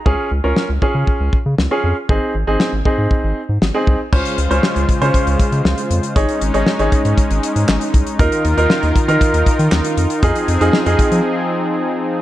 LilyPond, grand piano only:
\new Staff \with { instrumentName = "Grand piano" } { \time 4/4 \key des \major \tempo 4 = 118 <des' f' aes'>8 r16 <des' f' bes'>8 r16 <des' f' aes'>4 r8. <des' f' aes'>8 r16 | <c' ees' aes'>8 r16 <c' ees' aes'>8 r16 <c' ees' aes'>4 r8. <c' ees' aes'>8 r16 | <des' f' c''>8 r16 <des' f' c''>8 r8 <des' f' c''>4~ <des' f' c''>16 r4 | <ees' aes' des''>8 r16 <ees' aes' des''>16 r16 <ees' aes' des''>4~ <ees' aes' des''>16 r4. |
<ees' f' bes'>8 r16 <ees' f' bes'>8 r8 <ees' f' bes'>4~ <ees' f' bes'>16 r4 | <ees' f' aes'>8 r16 <ees' f' aes'>16 r16 <ees' f' aes'>4~ <ees' f' aes'>16 r4. | }